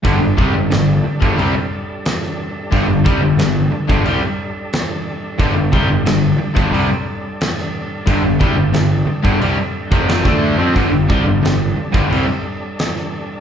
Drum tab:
CC |x---x---x---x---|x---x---x---x---|x---x---x---x---|x---x---x---x---|
SD |----o-------oo--|----o-------o---|----o-------oo--|----o-------oo--|
BD |o-o----o--------|o-o----o--------|o-o----o--------|o-o----o---o-o--|

CC |x---x---x---x---|
SD |----o-------oo--|
BD |o-o----o--------|